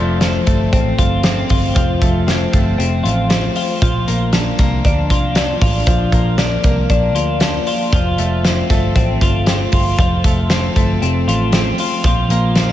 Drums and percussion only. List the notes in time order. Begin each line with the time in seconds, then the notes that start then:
0.21 snare, closed hi-hat
0.47 kick, closed hi-hat
0.73 kick, closed hi-hat
0.99 kick, closed hi-hat
1.23 snare, closed hi-hat
1.49 kick, open hi-hat
1.76 kick, closed hi-hat
2.02 kick, closed hi-hat
2.28 snare, closed hi-hat
2.53 kick, closed hi-hat
2.80 closed hi-hat
3.05 closed hi-hat
3.30 snare, closed hi-hat
3.56 open hi-hat
3.82 kick, closed hi-hat
4.08 closed hi-hat
4.33 snare, closed hi-hat
4.58 kick, snare, closed hi-hat
4.85 kick, closed hi-hat
5.10 kick, closed hi-hat
5.35 snare, closed hi-hat
5.61 kick, open hi-hat
5.87 kick, closed hi-hat
6.12 kick, closed hi-hat
6.38 snare, closed hi-hat
6.64 kick, closed hi-hat
6.90 kick, closed hi-hat
7.16 closed hi-hat
7.40 snare, closed hi-hat
7.67 open hi-hat
7.93 kick, closed hi-hat
8.18 closed hi-hat
8.44 snare, closed hi-hat
8.69 kick, snare, closed hi-hat
8.96 kick, closed hi-hat
9.21 kick, closed hi-hat
9.46 snare, closed hi-hat
9.72 kick, open hi-hat
9.99 kick, closed hi-hat
10.24 kick, closed hi-hat
10.50 snare, closed hi-hat
10.76 kick, closed hi-hat
11.02 closed hi-hat
11.29 closed hi-hat
11.52 snare, closed hi-hat
11.78 open hi-hat
12.04 kick, closed hi-hat
12.30 closed hi-hat
12.56 snare, closed hi-hat